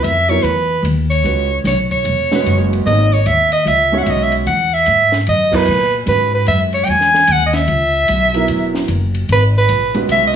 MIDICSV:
0, 0, Header, 1, 5, 480
1, 0, Start_track
1, 0, Tempo, 402145
1, 1492, Time_signature, 4, 2, 24, 8
1, 12363, End_track
2, 0, Start_track
2, 0, Title_t, "Soprano saxophone"
2, 0, Program_c, 0, 64
2, 44, Note_on_c, 0, 76, 79
2, 352, Note_on_c, 0, 73, 75
2, 370, Note_off_c, 0, 76, 0
2, 513, Note_on_c, 0, 71, 78
2, 531, Note_off_c, 0, 73, 0
2, 1003, Note_off_c, 0, 71, 0
2, 1317, Note_on_c, 0, 73, 79
2, 1923, Note_off_c, 0, 73, 0
2, 1994, Note_on_c, 0, 73, 78
2, 2128, Note_off_c, 0, 73, 0
2, 2290, Note_on_c, 0, 73, 89
2, 3197, Note_off_c, 0, 73, 0
2, 3417, Note_on_c, 0, 75, 83
2, 3740, Note_on_c, 0, 73, 72
2, 3758, Note_off_c, 0, 75, 0
2, 3897, Note_on_c, 0, 76, 80
2, 3915, Note_off_c, 0, 73, 0
2, 4203, Note_off_c, 0, 76, 0
2, 4210, Note_on_c, 0, 75, 82
2, 4364, Note_off_c, 0, 75, 0
2, 4390, Note_on_c, 0, 76, 81
2, 4751, Note_on_c, 0, 78, 74
2, 4769, Note_off_c, 0, 76, 0
2, 4815, Note_on_c, 0, 76, 68
2, 4833, Note_off_c, 0, 78, 0
2, 4897, Note_on_c, 0, 75, 79
2, 4915, Note_off_c, 0, 76, 0
2, 5053, Note_on_c, 0, 76, 72
2, 5071, Note_off_c, 0, 75, 0
2, 5176, Note_off_c, 0, 76, 0
2, 5334, Note_on_c, 0, 78, 81
2, 5654, Note_on_c, 0, 76, 86
2, 5672, Note_off_c, 0, 78, 0
2, 6127, Note_off_c, 0, 76, 0
2, 6314, Note_on_c, 0, 75, 84
2, 6631, Note_on_c, 0, 71, 94
2, 6648, Note_off_c, 0, 75, 0
2, 7095, Note_off_c, 0, 71, 0
2, 7263, Note_on_c, 0, 71, 81
2, 7545, Note_off_c, 0, 71, 0
2, 7576, Note_on_c, 0, 71, 72
2, 7727, Note_off_c, 0, 71, 0
2, 7738, Note_on_c, 0, 76, 89
2, 7875, Note_off_c, 0, 76, 0
2, 8047, Note_on_c, 0, 73, 87
2, 8171, Note_on_c, 0, 79, 74
2, 8189, Note_off_c, 0, 73, 0
2, 8232, Note_on_c, 0, 80, 100
2, 8249, Note_off_c, 0, 79, 0
2, 8737, Note_on_c, 0, 78, 96
2, 8755, Note_off_c, 0, 80, 0
2, 8901, Note_off_c, 0, 78, 0
2, 8908, Note_on_c, 0, 75, 64
2, 9012, Note_on_c, 0, 76, 87
2, 9030, Note_off_c, 0, 75, 0
2, 10446, Note_off_c, 0, 76, 0
2, 11132, Note_on_c, 0, 71, 85
2, 11262, Note_off_c, 0, 71, 0
2, 11431, Note_on_c, 0, 71, 81
2, 11863, Note_off_c, 0, 71, 0
2, 12074, Note_on_c, 0, 76, 102
2, 12251, Note_off_c, 0, 76, 0
2, 12263, Note_on_c, 0, 75, 70
2, 12363, Note_off_c, 0, 75, 0
2, 12363, End_track
3, 0, Start_track
3, 0, Title_t, "Grand piano"
3, 0, Program_c, 1, 0
3, 343, Note_on_c, 1, 54, 66
3, 354, Note_on_c, 1, 59, 58
3, 362, Note_on_c, 1, 64, 55
3, 368, Note_on_c, 1, 70, 66
3, 505, Note_off_c, 1, 54, 0
3, 511, Note_off_c, 1, 59, 0
3, 515, Note_off_c, 1, 64, 0
3, 518, Note_off_c, 1, 70, 0
3, 1479, Note_on_c, 1, 56, 53
3, 1485, Note_on_c, 1, 61, 45
3, 1498, Note_on_c, 1, 66, 52
3, 1500, Note_on_c, 1, 71, 64
3, 1764, Note_off_c, 1, 56, 0
3, 1767, Note_off_c, 1, 61, 0
3, 1774, Note_off_c, 1, 66, 0
3, 1775, Note_off_c, 1, 71, 0
3, 2772, Note_on_c, 1, 56, 79
3, 2779, Note_on_c, 1, 61, 66
3, 2788, Note_on_c, 1, 66, 69
3, 2797, Note_on_c, 1, 71, 79
3, 3382, Note_off_c, 1, 56, 0
3, 3386, Note_off_c, 1, 61, 0
3, 3390, Note_off_c, 1, 66, 0
3, 3395, Note_off_c, 1, 71, 0
3, 3416, Note_on_c, 1, 58, 55
3, 3423, Note_on_c, 1, 63, 52
3, 3433, Note_on_c, 1, 68, 52
3, 3442, Note_on_c, 1, 73, 61
3, 3692, Note_off_c, 1, 58, 0
3, 3696, Note_off_c, 1, 63, 0
3, 3701, Note_off_c, 1, 68, 0
3, 3705, Note_off_c, 1, 73, 0
3, 4680, Note_on_c, 1, 56, 71
3, 4687, Note_on_c, 1, 61, 70
3, 4688, Note_on_c, 1, 66, 69
3, 4698, Note_on_c, 1, 73, 77
3, 5296, Note_off_c, 1, 56, 0
3, 5300, Note_off_c, 1, 61, 0
3, 5300, Note_off_c, 1, 66, 0
3, 5305, Note_off_c, 1, 73, 0
3, 6583, Note_on_c, 1, 54, 76
3, 6589, Note_on_c, 1, 59, 67
3, 6605, Note_on_c, 1, 64, 67
3, 6611, Note_on_c, 1, 70, 78
3, 6745, Note_off_c, 1, 54, 0
3, 6748, Note_off_c, 1, 59, 0
3, 6755, Note_off_c, 1, 64, 0
3, 6759, Note_off_c, 1, 70, 0
3, 7231, Note_on_c, 1, 56, 50
3, 7242, Note_on_c, 1, 61, 49
3, 7250, Note_on_c, 1, 66, 50
3, 7259, Note_on_c, 1, 71, 65
3, 8578, Note_off_c, 1, 56, 0
3, 8584, Note_off_c, 1, 61, 0
3, 8588, Note_off_c, 1, 66, 0
3, 8592, Note_off_c, 1, 71, 0
3, 9958, Note_on_c, 1, 54, 68
3, 9964, Note_on_c, 1, 59, 64
3, 9976, Note_on_c, 1, 64, 68
3, 9982, Note_on_c, 1, 70, 71
3, 10575, Note_off_c, 1, 54, 0
3, 10578, Note_off_c, 1, 59, 0
3, 10584, Note_off_c, 1, 64, 0
3, 10587, Note_off_c, 1, 70, 0
3, 11869, Note_on_c, 1, 56, 73
3, 11877, Note_on_c, 1, 61, 63
3, 11878, Note_on_c, 1, 66, 68
3, 11891, Note_on_c, 1, 71, 84
3, 12363, Note_off_c, 1, 56, 0
3, 12363, Note_off_c, 1, 61, 0
3, 12363, Note_off_c, 1, 66, 0
3, 12363, Note_off_c, 1, 71, 0
3, 12363, End_track
4, 0, Start_track
4, 0, Title_t, "Upright bass"
4, 0, Program_c, 2, 32
4, 47, Note_on_c, 2, 41, 80
4, 512, Note_off_c, 2, 41, 0
4, 519, Note_on_c, 2, 40, 73
4, 979, Note_off_c, 2, 40, 0
4, 987, Note_on_c, 2, 39, 82
4, 1464, Note_off_c, 2, 39, 0
4, 1475, Note_on_c, 2, 37, 74
4, 1948, Note_off_c, 2, 37, 0
4, 1959, Note_on_c, 2, 35, 87
4, 2430, Note_off_c, 2, 35, 0
4, 2440, Note_on_c, 2, 28, 80
4, 2911, Note_off_c, 2, 28, 0
4, 2938, Note_on_c, 2, 30, 85
4, 3400, Note_off_c, 2, 30, 0
4, 3413, Note_on_c, 2, 32, 85
4, 3877, Note_off_c, 2, 32, 0
4, 3890, Note_on_c, 2, 39, 82
4, 4356, Note_off_c, 2, 39, 0
4, 4362, Note_on_c, 2, 37, 78
4, 4831, Note_off_c, 2, 37, 0
4, 4850, Note_on_c, 2, 35, 86
4, 5315, Note_off_c, 2, 35, 0
4, 5325, Note_on_c, 2, 40, 85
4, 5793, Note_off_c, 2, 40, 0
4, 5816, Note_on_c, 2, 44, 78
4, 6279, Note_off_c, 2, 44, 0
4, 6301, Note_on_c, 2, 42, 72
4, 6762, Note_off_c, 2, 42, 0
4, 6780, Note_on_c, 2, 46, 83
4, 7241, Note_off_c, 2, 46, 0
4, 7247, Note_on_c, 2, 44, 82
4, 7714, Note_off_c, 2, 44, 0
4, 7728, Note_on_c, 2, 42, 82
4, 8195, Note_off_c, 2, 42, 0
4, 8215, Note_on_c, 2, 40, 69
4, 8678, Note_off_c, 2, 40, 0
4, 8688, Note_on_c, 2, 39, 86
4, 9155, Note_off_c, 2, 39, 0
4, 9164, Note_on_c, 2, 37, 86
4, 9633, Note_off_c, 2, 37, 0
4, 9653, Note_on_c, 2, 35, 92
4, 10117, Note_off_c, 2, 35, 0
4, 10137, Note_on_c, 2, 28, 76
4, 10596, Note_off_c, 2, 28, 0
4, 10603, Note_on_c, 2, 30, 83
4, 11072, Note_off_c, 2, 30, 0
4, 11088, Note_on_c, 2, 32, 88
4, 11555, Note_off_c, 2, 32, 0
4, 11564, Note_on_c, 2, 34, 90
4, 12033, Note_off_c, 2, 34, 0
4, 12041, Note_on_c, 2, 35, 76
4, 12363, Note_off_c, 2, 35, 0
4, 12363, End_track
5, 0, Start_track
5, 0, Title_t, "Drums"
5, 49, Note_on_c, 9, 44, 44
5, 49, Note_on_c, 9, 51, 57
5, 168, Note_off_c, 9, 44, 0
5, 168, Note_off_c, 9, 51, 0
5, 529, Note_on_c, 9, 51, 52
5, 649, Note_off_c, 9, 51, 0
5, 1010, Note_on_c, 9, 44, 54
5, 1010, Note_on_c, 9, 51, 63
5, 1130, Note_off_c, 9, 44, 0
5, 1130, Note_off_c, 9, 51, 0
5, 1329, Note_on_c, 9, 51, 43
5, 1448, Note_off_c, 9, 51, 0
5, 1493, Note_on_c, 9, 51, 54
5, 1613, Note_off_c, 9, 51, 0
5, 1970, Note_on_c, 9, 44, 45
5, 1970, Note_on_c, 9, 51, 57
5, 1975, Note_on_c, 9, 38, 32
5, 2090, Note_off_c, 9, 44, 0
5, 2090, Note_off_c, 9, 51, 0
5, 2094, Note_off_c, 9, 38, 0
5, 2279, Note_on_c, 9, 51, 41
5, 2283, Note_on_c, 9, 36, 51
5, 2399, Note_off_c, 9, 51, 0
5, 2403, Note_off_c, 9, 36, 0
5, 2445, Note_on_c, 9, 51, 61
5, 2564, Note_off_c, 9, 51, 0
5, 2764, Note_on_c, 9, 38, 58
5, 2883, Note_off_c, 9, 38, 0
5, 2941, Note_on_c, 9, 44, 51
5, 2941, Note_on_c, 9, 51, 61
5, 3060, Note_off_c, 9, 44, 0
5, 3060, Note_off_c, 9, 51, 0
5, 3257, Note_on_c, 9, 51, 48
5, 3377, Note_off_c, 9, 51, 0
5, 3425, Note_on_c, 9, 51, 48
5, 3544, Note_off_c, 9, 51, 0
5, 3889, Note_on_c, 9, 44, 54
5, 3889, Note_on_c, 9, 51, 61
5, 4008, Note_off_c, 9, 44, 0
5, 4008, Note_off_c, 9, 51, 0
5, 4199, Note_on_c, 9, 51, 42
5, 4318, Note_off_c, 9, 51, 0
5, 4378, Note_on_c, 9, 51, 66
5, 4497, Note_off_c, 9, 51, 0
5, 4848, Note_on_c, 9, 44, 46
5, 4848, Note_on_c, 9, 51, 61
5, 4967, Note_off_c, 9, 44, 0
5, 4967, Note_off_c, 9, 51, 0
5, 5153, Note_on_c, 9, 51, 50
5, 5272, Note_off_c, 9, 51, 0
5, 5331, Note_on_c, 9, 51, 56
5, 5450, Note_off_c, 9, 51, 0
5, 5802, Note_on_c, 9, 44, 51
5, 5802, Note_on_c, 9, 51, 56
5, 5922, Note_off_c, 9, 44, 0
5, 5922, Note_off_c, 9, 51, 0
5, 6114, Note_on_c, 9, 38, 49
5, 6233, Note_off_c, 9, 38, 0
5, 6285, Note_on_c, 9, 51, 57
5, 6404, Note_off_c, 9, 51, 0
5, 6594, Note_on_c, 9, 49, 69
5, 6597, Note_on_c, 9, 36, 78
5, 6713, Note_off_c, 9, 49, 0
5, 6716, Note_off_c, 9, 36, 0
5, 6753, Note_on_c, 9, 44, 55
5, 6872, Note_off_c, 9, 44, 0
5, 7239, Note_on_c, 9, 51, 56
5, 7359, Note_off_c, 9, 51, 0
5, 7715, Note_on_c, 9, 44, 43
5, 7715, Note_on_c, 9, 51, 58
5, 7835, Note_off_c, 9, 44, 0
5, 7835, Note_off_c, 9, 51, 0
5, 8028, Note_on_c, 9, 51, 42
5, 8148, Note_off_c, 9, 51, 0
5, 8196, Note_on_c, 9, 51, 65
5, 8315, Note_off_c, 9, 51, 0
5, 8365, Note_on_c, 9, 38, 29
5, 8484, Note_off_c, 9, 38, 0
5, 8528, Note_on_c, 9, 38, 39
5, 8647, Note_off_c, 9, 38, 0
5, 8680, Note_on_c, 9, 44, 61
5, 8680, Note_on_c, 9, 51, 64
5, 8800, Note_off_c, 9, 44, 0
5, 8800, Note_off_c, 9, 51, 0
5, 8988, Note_on_c, 9, 51, 45
5, 8992, Note_on_c, 9, 38, 48
5, 9107, Note_off_c, 9, 51, 0
5, 9112, Note_off_c, 9, 38, 0
5, 9162, Note_on_c, 9, 51, 58
5, 9282, Note_off_c, 9, 51, 0
5, 9642, Note_on_c, 9, 44, 46
5, 9642, Note_on_c, 9, 51, 62
5, 9762, Note_off_c, 9, 44, 0
5, 9762, Note_off_c, 9, 51, 0
5, 9957, Note_on_c, 9, 51, 46
5, 10076, Note_off_c, 9, 51, 0
5, 10122, Note_on_c, 9, 51, 56
5, 10241, Note_off_c, 9, 51, 0
5, 10439, Note_on_c, 9, 38, 48
5, 10559, Note_off_c, 9, 38, 0
5, 10599, Note_on_c, 9, 44, 52
5, 10599, Note_on_c, 9, 51, 62
5, 10718, Note_off_c, 9, 44, 0
5, 10718, Note_off_c, 9, 51, 0
5, 10915, Note_on_c, 9, 51, 50
5, 11035, Note_off_c, 9, 51, 0
5, 11087, Note_on_c, 9, 51, 57
5, 11207, Note_off_c, 9, 51, 0
5, 11563, Note_on_c, 9, 44, 58
5, 11563, Note_on_c, 9, 51, 60
5, 11682, Note_off_c, 9, 44, 0
5, 11682, Note_off_c, 9, 51, 0
5, 11868, Note_on_c, 9, 51, 44
5, 11987, Note_off_c, 9, 51, 0
5, 12043, Note_on_c, 9, 51, 64
5, 12162, Note_off_c, 9, 51, 0
5, 12363, End_track
0, 0, End_of_file